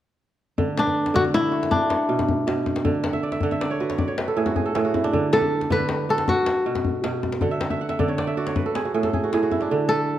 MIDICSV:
0, 0, Header, 1, 4, 480
1, 0, Start_track
1, 0, Tempo, 379987
1, 730, Time_signature, 12, 3, 24, 8
1, 12869, End_track
2, 0, Start_track
2, 0, Title_t, "Kora"
2, 0, Program_c, 0, 46
2, 732, Note_on_c, 0, 50, 77
2, 976, Note_on_c, 0, 71, 55
2, 1426, Note_off_c, 0, 50, 0
2, 1440, Note_on_c, 0, 50, 74
2, 1446, Note_on_c, 0, 62, 64
2, 1917, Note_on_c, 0, 66, 67
2, 2229, Note_off_c, 0, 50, 0
2, 2396, Note_on_c, 0, 78, 59
2, 2529, Note_off_c, 0, 71, 0
2, 2639, Note_on_c, 0, 47, 74
2, 3106, Note_off_c, 0, 47, 0
2, 3121, Note_on_c, 0, 47, 78
2, 3568, Note_off_c, 0, 62, 0
2, 3596, Note_on_c, 0, 50, 80
2, 3614, Note_off_c, 0, 78, 0
2, 3666, Note_off_c, 0, 47, 0
2, 3764, Note_off_c, 0, 66, 0
2, 3832, Note_on_c, 0, 78, 66
2, 3956, Note_on_c, 0, 76, 66
2, 4080, Note_on_c, 0, 74, 68
2, 4189, Note_off_c, 0, 76, 0
2, 4194, Note_on_c, 0, 76, 63
2, 4320, Note_off_c, 0, 50, 0
2, 4328, Note_off_c, 0, 78, 0
2, 4333, Note_on_c, 0, 78, 67
2, 4334, Note_on_c, 0, 50, 80
2, 4441, Note_off_c, 0, 76, 0
2, 4446, Note_on_c, 0, 76, 66
2, 4559, Note_off_c, 0, 74, 0
2, 4564, Note_on_c, 0, 74, 74
2, 4681, Note_on_c, 0, 73, 64
2, 4804, Note_on_c, 0, 66, 71
2, 4804, Note_on_c, 0, 71, 58
2, 4918, Note_off_c, 0, 73, 0
2, 4923, Note_on_c, 0, 73, 66
2, 4999, Note_off_c, 0, 74, 0
2, 5027, Note_on_c, 0, 74, 69
2, 5105, Note_off_c, 0, 50, 0
2, 5146, Note_off_c, 0, 73, 0
2, 5151, Note_on_c, 0, 73, 62
2, 5278, Note_off_c, 0, 71, 0
2, 5283, Note_on_c, 0, 71, 67
2, 5404, Note_on_c, 0, 69, 65
2, 5515, Note_on_c, 0, 45, 70
2, 5518, Note_on_c, 0, 68, 65
2, 5551, Note_off_c, 0, 78, 0
2, 5632, Note_off_c, 0, 66, 0
2, 5637, Note_on_c, 0, 66, 70
2, 5752, Note_off_c, 0, 76, 0
2, 5754, Note_off_c, 0, 68, 0
2, 5759, Note_on_c, 0, 68, 66
2, 5835, Note_off_c, 0, 69, 0
2, 5882, Note_on_c, 0, 69, 65
2, 5992, Note_off_c, 0, 45, 0
2, 6002, Note_off_c, 0, 68, 0
2, 6006, Note_on_c, 0, 45, 78
2, 6007, Note_on_c, 0, 68, 72
2, 6118, Note_off_c, 0, 66, 0
2, 6123, Note_on_c, 0, 66, 68
2, 6243, Note_on_c, 0, 64, 64
2, 6367, Note_on_c, 0, 62, 71
2, 6427, Note_off_c, 0, 74, 0
2, 6443, Note_off_c, 0, 73, 0
2, 6485, Note_on_c, 0, 50, 81
2, 6546, Note_off_c, 0, 45, 0
2, 6725, Note_off_c, 0, 71, 0
2, 6730, Note_on_c, 0, 71, 64
2, 7193, Note_off_c, 0, 50, 0
2, 7207, Note_off_c, 0, 62, 0
2, 7207, Note_on_c, 0, 50, 83
2, 7212, Note_on_c, 0, 62, 64
2, 7546, Note_off_c, 0, 69, 0
2, 7690, Note_off_c, 0, 66, 0
2, 7695, Note_on_c, 0, 66, 70
2, 7730, Note_off_c, 0, 68, 0
2, 7988, Note_off_c, 0, 50, 0
2, 8167, Note_on_c, 0, 78, 60
2, 8223, Note_off_c, 0, 64, 0
2, 8283, Note_off_c, 0, 71, 0
2, 8413, Note_on_c, 0, 47, 72
2, 8874, Note_off_c, 0, 47, 0
2, 8889, Note_on_c, 0, 47, 77
2, 9334, Note_off_c, 0, 62, 0
2, 9367, Note_off_c, 0, 78, 0
2, 9367, Note_on_c, 0, 50, 71
2, 9372, Note_on_c, 0, 78, 68
2, 9431, Note_off_c, 0, 47, 0
2, 9490, Note_on_c, 0, 76, 68
2, 9542, Note_off_c, 0, 66, 0
2, 9606, Note_off_c, 0, 78, 0
2, 9611, Note_on_c, 0, 78, 64
2, 9728, Note_off_c, 0, 76, 0
2, 9733, Note_on_c, 0, 76, 66
2, 9861, Note_off_c, 0, 78, 0
2, 9866, Note_on_c, 0, 78, 69
2, 9968, Note_off_c, 0, 76, 0
2, 9973, Note_on_c, 0, 76, 66
2, 10079, Note_off_c, 0, 50, 0
2, 10093, Note_on_c, 0, 50, 79
2, 10095, Note_on_c, 0, 74, 66
2, 10213, Note_on_c, 0, 73, 65
2, 10333, Note_off_c, 0, 74, 0
2, 10338, Note_on_c, 0, 74, 67
2, 10444, Note_off_c, 0, 76, 0
2, 10449, Note_on_c, 0, 76, 66
2, 10574, Note_off_c, 0, 74, 0
2, 10575, Note_on_c, 0, 66, 74
2, 10579, Note_on_c, 0, 74, 67
2, 10655, Note_off_c, 0, 73, 0
2, 10698, Note_on_c, 0, 73, 66
2, 10815, Note_on_c, 0, 71, 65
2, 10875, Note_off_c, 0, 50, 0
2, 10937, Note_on_c, 0, 69, 64
2, 11058, Note_on_c, 0, 68, 65
2, 11084, Note_off_c, 0, 78, 0
2, 11176, Note_off_c, 0, 66, 0
2, 11181, Note_on_c, 0, 66, 60
2, 11295, Note_off_c, 0, 68, 0
2, 11298, Note_on_c, 0, 45, 69
2, 11300, Note_on_c, 0, 68, 68
2, 11375, Note_off_c, 0, 69, 0
2, 11423, Note_on_c, 0, 69, 64
2, 11535, Note_off_c, 0, 68, 0
2, 11540, Note_on_c, 0, 68, 66
2, 11661, Note_off_c, 0, 66, 0
2, 11666, Note_on_c, 0, 66, 65
2, 11755, Note_off_c, 0, 76, 0
2, 11777, Note_off_c, 0, 45, 0
2, 11790, Note_off_c, 0, 68, 0
2, 11791, Note_on_c, 0, 45, 74
2, 11795, Note_on_c, 0, 68, 70
2, 11871, Note_off_c, 0, 69, 0
2, 11904, Note_off_c, 0, 66, 0
2, 11909, Note_on_c, 0, 66, 66
2, 11979, Note_off_c, 0, 74, 0
2, 12021, Note_on_c, 0, 64, 58
2, 12147, Note_off_c, 0, 73, 0
2, 12148, Note_on_c, 0, 62, 68
2, 12269, Note_on_c, 0, 50, 78
2, 12317, Note_off_c, 0, 45, 0
2, 12368, Note_off_c, 0, 71, 0
2, 12503, Note_on_c, 0, 71, 64
2, 12869, Note_off_c, 0, 50, 0
2, 12869, Note_off_c, 0, 62, 0
2, 12869, Note_off_c, 0, 64, 0
2, 12869, Note_off_c, 0, 66, 0
2, 12869, Note_off_c, 0, 68, 0
2, 12869, Note_off_c, 0, 71, 0
2, 12869, End_track
3, 0, Start_track
3, 0, Title_t, "Kora"
3, 0, Program_c, 1, 46
3, 997, Note_on_c, 1, 62, 74
3, 1459, Note_on_c, 1, 66, 100
3, 1535, Note_off_c, 1, 66, 0
3, 1697, Note_on_c, 1, 64, 96
3, 2156, Note_off_c, 1, 62, 0
3, 2161, Note_on_c, 1, 62, 70
3, 3677, Note_off_c, 1, 64, 0
3, 4283, Note_off_c, 1, 62, 0
3, 6736, Note_on_c, 1, 69, 88
3, 7226, Note_on_c, 1, 71, 93
3, 7703, Note_off_c, 1, 69, 0
3, 7708, Note_on_c, 1, 69, 77
3, 7944, Note_on_c, 1, 66, 78
3, 8779, Note_off_c, 1, 71, 0
3, 9372, Note_off_c, 1, 69, 0
3, 9790, Note_off_c, 1, 66, 0
3, 12489, Note_on_c, 1, 69, 93
3, 12869, Note_off_c, 1, 69, 0
3, 12869, End_track
4, 0, Start_track
4, 0, Title_t, "Djembe"
4, 735, Note_on_c, 9, 64, 74
4, 858, Note_on_c, 9, 62, 20
4, 861, Note_off_c, 9, 64, 0
4, 979, Note_off_c, 9, 62, 0
4, 979, Note_on_c, 9, 62, 68
4, 1099, Note_off_c, 9, 62, 0
4, 1099, Note_on_c, 9, 62, 23
4, 1099, Note_on_c, 9, 63, 55
4, 1225, Note_off_c, 9, 62, 0
4, 1225, Note_off_c, 9, 63, 0
4, 1339, Note_on_c, 9, 62, 55
4, 1463, Note_off_c, 9, 62, 0
4, 1463, Note_on_c, 9, 62, 22
4, 1463, Note_on_c, 9, 64, 70
4, 1574, Note_on_c, 9, 63, 60
4, 1589, Note_off_c, 9, 62, 0
4, 1589, Note_off_c, 9, 64, 0
4, 1695, Note_on_c, 9, 62, 73
4, 1701, Note_off_c, 9, 63, 0
4, 1821, Note_off_c, 9, 62, 0
4, 2057, Note_on_c, 9, 62, 56
4, 2168, Note_on_c, 9, 63, 70
4, 2168, Note_on_c, 9, 64, 67
4, 2184, Note_off_c, 9, 62, 0
4, 2294, Note_off_c, 9, 63, 0
4, 2294, Note_off_c, 9, 64, 0
4, 2403, Note_on_c, 9, 62, 69
4, 2529, Note_off_c, 9, 62, 0
4, 2651, Note_on_c, 9, 62, 24
4, 2767, Note_off_c, 9, 62, 0
4, 2767, Note_on_c, 9, 62, 57
4, 2767, Note_on_c, 9, 63, 58
4, 2888, Note_on_c, 9, 64, 77
4, 2893, Note_off_c, 9, 62, 0
4, 2893, Note_off_c, 9, 63, 0
4, 3014, Note_off_c, 9, 64, 0
4, 3129, Note_on_c, 9, 62, 72
4, 3256, Note_off_c, 9, 62, 0
4, 3363, Note_on_c, 9, 62, 24
4, 3363, Note_on_c, 9, 63, 77
4, 3485, Note_off_c, 9, 62, 0
4, 3485, Note_on_c, 9, 62, 62
4, 3489, Note_off_c, 9, 63, 0
4, 3599, Note_on_c, 9, 64, 77
4, 3611, Note_off_c, 9, 62, 0
4, 3723, Note_on_c, 9, 62, 23
4, 3726, Note_off_c, 9, 64, 0
4, 3836, Note_off_c, 9, 62, 0
4, 3836, Note_on_c, 9, 62, 72
4, 3956, Note_off_c, 9, 62, 0
4, 3956, Note_on_c, 9, 62, 26
4, 3956, Note_on_c, 9, 63, 55
4, 4082, Note_off_c, 9, 62, 0
4, 4082, Note_off_c, 9, 63, 0
4, 4193, Note_on_c, 9, 62, 50
4, 4303, Note_off_c, 9, 62, 0
4, 4303, Note_on_c, 9, 62, 22
4, 4303, Note_on_c, 9, 64, 72
4, 4429, Note_off_c, 9, 62, 0
4, 4429, Note_off_c, 9, 64, 0
4, 4437, Note_on_c, 9, 63, 59
4, 4563, Note_off_c, 9, 63, 0
4, 4563, Note_on_c, 9, 62, 66
4, 4689, Note_off_c, 9, 62, 0
4, 4923, Note_on_c, 9, 62, 55
4, 5034, Note_on_c, 9, 63, 65
4, 5034, Note_on_c, 9, 64, 60
4, 5049, Note_off_c, 9, 62, 0
4, 5161, Note_off_c, 9, 63, 0
4, 5161, Note_off_c, 9, 64, 0
4, 5278, Note_on_c, 9, 62, 69
4, 5404, Note_off_c, 9, 62, 0
4, 5525, Note_on_c, 9, 62, 24
4, 5632, Note_off_c, 9, 62, 0
4, 5632, Note_on_c, 9, 62, 52
4, 5632, Note_on_c, 9, 63, 49
4, 5757, Note_on_c, 9, 64, 64
4, 5759, Note_off_c, 9, 62, 0
4, 5759, Note_off_c, 9, 63, 0
4, 5884, Note_off_c, 9, 64, 0
4, 6001, Note_on_c, 9, 62, 61
4, 6127, Note_off_c, 9, 62, 0
4, 6243, Note_on_c, 9, 62, 19
4, 6243, Note_on_c, 9, 63, 67
4, 6369, Note_off_c, 9, 62, 0
4, 6369, Note_off_c, 9, 63, 0
4, 6369, Note_on_c, 9, 62, 49
4, 6485, Note_on_c, 9, 64, 58
4, 6495, Note_off_c, 9, 62, 0
4, 6610, Note_on_c, 9, 62, 20
4, 6611, Note_off_c, 9, 64, 0
4, 6730, Note_off_c, 9, 62, 0
4, 6730, Note_on_c, 9, 62, 68
4, 6841, Note_off_c, 9, 62, 0
4, 6841, Note_on_c, 9, 62, 21
4, 6841, Note_on_c, 9, 63, 51
4, 6967, Note_off_c, 9, 62, 0
4, 6967, Note_off_c, 9, 63, 0
4, 7089, Note_on_c, 9, 62, 46
4, 7205, Note_off_c, 9, 62, 0
4, 7205, Note_on_c, 9, 62, 21
4, 7205, Note_on_c, 9, 64, 65
4, 7326, Note_on_c, 9, 63, 53
4, 7331, Note_off_c, 9, 62, 0
4, 7331, Note_off_c, 9, 64, 0
4, 7437, Note_on_c, 9, 62, 67
4, 7452, Note_off_c, 9, 63, 0
4, 7563, Note_off_c, 9, 62, 0
4, 7808, Note_on_c, 9, 62, 58
4, 7931, Note_on_c, 9, 63, 69
4, 7931, Note_on_c, 9, 64, 69
4, 7934, Note_off_c, 9, 62, 0
4, 8057, Note_off_c, 9, 63, 0
4, 8057, Note_off_c, 9, 64, 0
4, 8164, Note_on_c, 9, 62, 72
4, 8290, Note_off_c, 9, 62, 0
4, 8417, Note_on_c, 9, 62, 25
4, 8531, Note_off_c, 9, 62, 0
4, 8531, Note_on_c, 9, 62, 54
4, 8531, Note_on_c, 9, 63, 54
4, 8648, Note_on_c, 9, 64, 67
4, 8657, Note_off_c, 9, 62, 0
4, 8657, Note_off_c, 9, 63, 0
4, 8774, Note_off_c, 9, 64, 0
4, 8890, Note_on_c, 9, 62, 71
4, 9017, Note_off_c, 9, 62, 0
4, 9135, Note_on_c, 9, 62, 24
4, 9135, Note_on_c, 9, 63, 76
4, 9252, Note_off_c, 9, 62, 0
4, 9252, Note_on_c, 9, 62, 60
4, 9261, Note_off_c, 9, 63, 0
4, 9360, Note_off_c, 9, 62, 0
4, 9360, Note_on_c, 9, 62, 23
4, 9360, Note_on_c, 9, 64, 76
4, 9486, Note_off_c, 9, 62, 0
4, 9486, Note_off_c, 9, 64, 0
4, 9486, Note_on_c, 9, 62, 23
4, 9608, Note_off_c, 9, 62, 0
4, 9608, Note_on_c, 9, 62, 77
4, 9730, Note_on_c, 9, 63, 65
4, 9735, Note_off_c, 9, 62, 0
4, 9849, Note_on_c, 9, 62, 26
4, 9856, Note_off_c, 9, 63, 0
4, 9967, Note_off_c, 9, 62, 0
4, 9967, Note_on_c, 9, 62, 49
4, 10093, Note_off_c, 9, 62, 0
4, 10097, Note_on_c, 9, 64, 74
4, 10211, Note_on_c, 9, 62, 23
4, 10211, Note_on_c, 9, 63, 57
4, 10224, Note_off_c, 9, 64, 0
4, 10335, Note_off_c, 9, 62, 0
4, 10335, Note_on_c, 9, 62, 65
4, 10337, Note_off_c, 9, 63, 0
4, 10461, Note_off_c, 9, 62, 0
4, 10694, Note_on_c, 9, 62, 52
4, 10811, Note_on_c, 9, 63, 63
4, 10811, Note_on_c, 9, 64, 61
4, 10820, Note_off_c, 9, 62, 0
4, 10937, Note_off_c, 9, 63, 0
4, 10937, Note_off_c, 9, 64, 0
4, 11056, Note_on_c, 9, 62, 60
4, 11182, Note_off_c, 9, 62, 0
4, 11295, Note_on_c, 9, 62, 21
4, 11410, Note_off_c, 9, 62, 0
4, 11410, Note_on_c, 9, 62, 47
4, 11410, Note_on_c, 9, 63, 45
4, 11536, Note_on_c, 9, 64, 58
4, 11537, Note_off_c, 9, 62, 0
4, 11537, Note_off_c, 9, 63, 0
4, 11663, Note_off_c, 9, 64, 0
4, 11782, Note_on_c, 9, 62, 55
4, 11900, Note_off_c, 9, 62, 0
4, 11900, Note_on_c, 9, 62, 18
4, 12017, Note_off_c, 9, 62, 0
4, 12017, Note_on_c, 9, 62, 19
4, 12017, Note_on_c, 9, 63, 58
4, 12133, Note_off_c, 9, 62, 0
4, 12133, Note_on_c, 9, 62, 45
4, 12143, Note_off_c, 9, 63, 0
4, 12260, Note_off_c, 9, 62, 0
4, 12869, End_track
0, 0, End_of_file